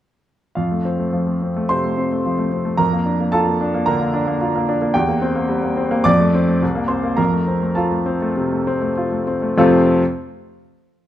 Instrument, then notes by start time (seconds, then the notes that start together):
grand piano
0.55 F2 F4 F5
0.71 A3
0.85 C4
0.99 A3
1.13 F3
1.27 A3
1.42 C4
1.56 A3
1.69 C3 C5 C6
1.84 A3
1.98 C4
2.12 A3
2.26 F3
2.38 A3
2.52 C4
2.65 A3
2.77 F2 A#4 A#5
2.93 A#3
3.06 D4
3.20 A#3
3.32 F4 A4 A5
3.47 A#3
3.61 D4
3.74 A#3
3.86 D3 A#4 A#5
4.00 A#3
4.14 D4
4.27 A#3
4.41 F4
4.56 A#3
4.69 D4
4.82 A#3
4.94 E2 G4 G5
5.08 A#3
5.22 C4
5.36 A#3
5.49 G3
5.63 A#3
5.77 C4
5.91 A#3
6.04 F2 D5 D6
6.20 A3
6.34 C4
6.48 A3
6.62 C2
6.75 A#3
6.88 C4 C5 C6
7.04 A#3
7.17 F2 A#4 A#5
7.33 A3
7.48 C4
7.62 A3
7.75 F4 A4 A5
7.91 A3
8.06 C4
8.22 A3
8.37 C3
8.52 A3
8.67 C4
8.81 A3
8.97 F4
9.12 A3
9.27 C4
9.42 A3
9.57 F2 C3 A3 C4 F4 A4